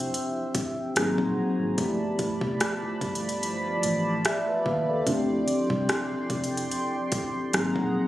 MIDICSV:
0, 0, Header, 1, 6, 480
1, 0, Start_track
1, 0, Tempo, 821918
1, 1041, Time_signature, 4, 2, 24, 8
1, 4717, End_track
2, 0, Start_track
2, 0, Title_t, "Analog synth pad"
2, 0, Program_c, 0, 89
2, 0, Note_on_c, 0, 53, 84
2, 0, Note_on_c, 0, 72, 76
2, 0, Note_on_c, 0, 76, 78
2, 0, Note_on_c, 0, 79, 88
2, 545, Note_off_c, 0, 53, 0
2, 545, Note_off_c, 0, 72, 0
2, 546, Note_off_c, 0, 76, 0
2, 546, Note_off_c, 0, 79, 0
2, 559, Note_on_c, 0, 82, 81
2, 560, Note_on_c, 0, 66, 75
2, 560, Note_on_c, 0, 72, 68
2, 560, Note_on_c, 0, 80, 70
2, 1035, Note_off_c, 0, 82, 0
2, 1036, Note_off_c, 0, 66, 0
2, 1036, Note_off_c, 0, 72, 0
2, 1036, Note_off_c, 0, 80, 0
2, 1042, Note_on_c, 0, 81, 73
2, 1043, Note_on_c, 0, 83, 88
2, 1044, Note_on_c, 0, 53, 82
2, 1044, Note_on_c, 0, 74, 74
2, 2942, Note_off_c, 0, 81, 0
2, 2943, Note_off_c, 0, 83, 0
2, 2958, Note_on_c, 0, 79, 74
2, 2959, Note_on_c, 0, 84, 89
2, 4379, Note_off_c, 0, 53, 0
2, 4379, Note_off_c, 0, 74, 0
2, 4385, Note_off_c, 0, 79, 0
2, 4399, Note_on_c, 0, 68, 76
2, 4399, Note_on_c, 0, 78, 66
2, 4400, Note_on_c, 0, 82, 67
2, 4717, Note_off_c, 0, 68, 0
2, 4717, Note_off_c, 0, 78, 0
2, 4717, Note_off_c, 0, 82, 0
2, 4717, Note_off_c, 0, 84, 0
2, 4717, End_track
3, 0, Start_track
3, 0, Title_t, "Tine electric piano"
3, 0, Program_c, 1, 4
3, 0, Control_c, 1, 64, 127
3, 0, Note_on_c, 1, 53, 69
3, 0, Note_on_c, 1, 60, 67
3, 0, Note_on_c, 1, 62, 64
3, 0, Note_on_c, 1, 64, 65
3, 0, Note_on_c, 1, 67, 81
3, 533, Note_off_c, 1, 53, 0
3, 537, Note_off_c, 1, 60, 0
3, 540, Note_off_c, 1, 62, 0
3, 543, Note_off_c, 1, 64, 0
3, 547, Note_off_c, 1, 67, 0
3, 561, Note_on_c, 1, 54, 74
3, 564, Note_on_c, 1, 58, 70
3, 567, Note_on_c, 1, 60, 70
3, 568, Control_c, 1, 64, 0
3, 571, Note_on_c, 1, 63, 71
3, 574, Note_on_c, 1, 68, 84
3, 675, Control_c, 1, 64, 127
3, 1033, Note_on_c, 1, 53, 73
3, 1040, Note_on_c, 1, 57, 62
3, 1041, Note_off_c, 1, 54, 0
3, 1042, Note_off_c, 1, 58, 0
3, 1044, Note_off_c, 1, 60, 0
3, 1046, Note_off_c, 1, 63, 0
3, 1046, Note_on_c, 1, 59, 69
3, 1047, Note_off_c, 1, 68, 0
3, 1048, Control_c, 1, 64, 0
3, 1052, Note_on_c, 1, 64, 67
3, 1060, Note_on_c, 1, 67, 85
3, 1166, Control_c, 1, 64, 127
3, 2454, Note_off_c, 1, 53, 0
3, 2457, Note_off_c, 1, 57, 0
3, 2460, Note_off_c, 1, 59, 0
3, 2463, Note_off_c, 1, 64, 0
3, 2467, Note_off_c, 1, 67, 0
3, 2486, Note_on_c, 1, 76, 68
3, 2610, Note_off_c, 1, 76, 0
3, 2617, Note_on_c, 1, 76, 60
3, 2619, Note_on_c, 1, 71, 46
3, 2719, Note_off_c, 1, 76, 0
3, 2720, Note_off_c, 1, 71, 0
3, 2728, Note_on_c, 1, 77, 70
3, 2732, Note_on_c, 1, 71, 58
3, 2849, Note_off_c, 1, 77, 0
3, 2850, Note_off_c, 1, 71, 0
3, 2858, Note_on_c, 1, 74, 64
3, 2862, Note_on_c, 1, 69, 54
3, 2951, Note_on_c, 1, 53, 72
3, 2957, Note_on_c, 1, 60, 69
3, 2964, Note_on_c, 1, 62, 69
3, 2969, Control_c, 1, 64, 0
3, 2971, Note_on_c, 1, 64, 70
3, 2977, Note_on_c, 1, 67, 83
3, 3082, Note_off_c, 1, 74, 0
3, 3083, Control_c, 1, 64, 127
3, 3084, Note_off_c, 1, 69, 0
3, 4372, Note_off_c, 1, 53, 0
3, 4376, Note_off_c, 1, 60, 0
3, 4379, Note_off_c, 1, 62, 0
3, 4383, Note_off_c, 1, 64, 0
3, 4386, Note_off_c, 1, 67, 0
3, 4397, Note_on_c, 1, 54, 72
3, 4401, Note_on_c, 1, 58, 71
3, 4404, Note_on_c, 1, 60, 69
3, 4408, Control_c, 1, 64, 0
3, 4408, Note_on_c, 1, 63, 67
3, 4411, Note_on_c, 1, 68, 84
3, 4494, Control_c, 1, 64, 127
3, 4717, Note_off_c, 1, 54, 0
3, 4717, Note_off_c, 1, 58, 0
3, 4717, Note_off_c, 1, 60, 0
3, 4717, Note_off_c, 1, 63, 0
3, 4717, Note_off_c, 1, 68, 0
3, 4717, End_track
4, 0, Start_track
4, 0, Title_t, "Fingered electric bass"
4, 0, Program_c, 2, 33
4, 561, Note_on_c, 2, 32, 94
4, 674, Note_off_c, 2, 32, 0
4, 690, Note_on_c, 2, 34, 92
4, 787, Note_off_c, 2, 34, 0
4, 932, Note_on_c, 2, 32, 78
4, 1028, Note_off_c, 2, 32, 0
4, 1040, Note_on_c, 2, 31, 94
4, 1250, Note_off_c, 2, 31, 0
4, 1409, Note_on_c, 2, 29, 85
4, 1506, Note_off_c, 2, 29, 0
4, 1760, Note_on_c, 2, 31, 83
4, 2180, Note_off_c, 2, 31, 0
4, 2241, Note_on_c, 2, 33, 84
4, 2451, Note_off_c, 2, 33, 0
4, 2721, Note_on_c, 2, 39, 82
4, 2931, Note_off_c, 2, 39, 0
4, 2960, Note_on_c, 2, 38, 105
4, 3170, Note_off_c, 2, 38, 0
4, 3329, Note_on_c, 2, 36, 90
4, 3426, Note_off_c, 2, 36, 0
4, 3679, Note_on_c, 2, 29, 89
4, 3890, Note_off_c, 2, 29, 0
4, 4402, Note_on_c, 2, 32, 98
4, 4515, Note_off_c, 2, 32, 0
4, 4530, Note_on_c, 2, 34, 90
4, 4627, Note_off_c, 2, 34, 0
4, 4717, End_track
5, 0, Start_track
5, 0, Title_t, "Muted fingered electric bass strokes"
5, 1653, Note_on_c, 9, 29, 46
5, 1711, Note_off_c, 9, 29, 0
5, 3571, Note_on_c, 9, 29, 46
5, 3630, Note_off_c, 9, 29, 0
5, 4717, End_track
6, 0, Start_track
6, 0, Title_t, "Drums"
6, 0, Note_on_c, 9, 42, 55
6, 58, Note_off_c, 9, 42, 0
6, 82, Note_on_c, 9, 42, 62
6, 141, Note_off_c, 9, 42, 0
6, 319, Note_on_c, 9, 42, 70
6, 320, Note_on_c, 9, 36, 92
6, 377, Note_off_c, 9, 42, 0
6, 378, Note_off_c, 9, 36, 0
6, 561, Note_on_c, 9, 42, 71
6, 566, Note_on_c, 9, 37, 111
6, 619, Note_off_c, 9, 42, 0
6, 624, Note_off_c, 9, 37, 0
6, 690, Note_on_c, 9, 36, 83
6, 749, Note_off_c, 9, 36, 0
6, 1039, Note_on_c, 9, 42, 79
6, 1040, Note_on_c, 9, 36, 107
6, 1097, Note_off_c, 9, 42, 0
6, 1098, Note_off_c, 9, 36, 0
6, 1278, Note_on_c, 9, 42, 64
6, 1280, Note_on_c, 9, 36, 74
6, 1337, Note_off_c, 9, 42, 0
6, 1338, Note_off_c, 9, 36, 0
6, 1409, Note_on_c, 9, 36, 89
6, 1468, Note_off_c, 9, 36, 0
6, 1521, Note_on_c, 9, 42, 64
6, 1524, Note_on_c, 9, 37, 115
6, 1579, Note_off_c, 9, 42, 0
6, 1582, Note_off_c, 9, 37, 0
6, 1760, Note_on_c, 9, 36, 84
6, 1760, Note_on_c, 9, 42, 52
6, 1818, Note_off_c, 9, 36, 0
6, 1818, Note_off_c, 9, 42, 0
6, 1841, Note_on_c, 9, 42, 51
6, 1900, Note_off_c, 9, 42, 0
6, 1920, Note_on_c, 9, 42, 54
6, 1979, Note_off_c, 9, 42, 0
6, 2003, Note_on_c, 9, 42, 61
6, 2061, Note_off_c, 9, 42, 0
6, 2238, Note_on_c, 9, 42, 67
6, 2296, Note_off_c, 9, 42, 0
6, 2480, Note_on_c, 9, 42, 69
6, 2485, Note_on_c, 9, 37, 108
6, 2539, Note_off_c, 9, 42, 0
6, 2544, Note_off_c, 9, 37, 0
6, 2720, Note_on_c, 9, 36, 91
6, 2778, Note_off_c, 9, 36, 0
6, 2959, Note_on_c, 9, 36, 97
6, 2959, Note_on_c, 9, 42, 78
6, 3017, Note_off_c, 9, 42, 0
6, 3018, Note_off_c, 9, 36, 0
6, 3198, Note_on_c, 9, 42, 58
6, 3257, Note_off_c, 9, 42, 0
6, 3329, Note_on_c, 9, 36, 92
6, 3387, Note_off_c, 9, 36, 0
6, 3439, Note_on_c, 9, 42, 64
6, 3442, Note_on_c, 9, 37, 117
6, 3498, Note_off_c, 9, 42, 0
6, 3500, Note_off_c, 9, 37, 0
6, 3678, Note_on_c, 9, 42, 52
6, 3679, Note_on_c, 9, 36, 83
6, 3736, Note_off_c, 9, 42, 0
6, 3737, Note_off_c, 9, 36, 0
6, 3759, Note_on_c, 9, 42, 51
6, 3817, Note_off_c, 9, 42, 0
6, 3839, Note_on_c, 9, 42, 57
6, 3898, Note_off_c, 9, 42, 0
6, 3921, Note_on_c, 9, 42, 59
6, 3980, Note_off_c, 9, 42, 0
6, 4157, Note_on_c, 9, 42, 69
6, 4159, Note_on_c, 9, 36, 100
6, 4215, Note_off_c, 9, 42, 0
6, 4217, Note_off_c, 9, 36, 0
6, 4400, Note_on_c, 9, 42, 72
6, 4405, Note_on_c, 9, 37, 110
6, 4459, Note_off_c, 9, 42, 0
6, 4463, Note_off_c, 9, 37, 0
6, 4530, Note_on_c, 9, 36, 84
6, 4588, Note_off_c, 9, 36, 0
6, 4717, End_track
0, 0, End_of_file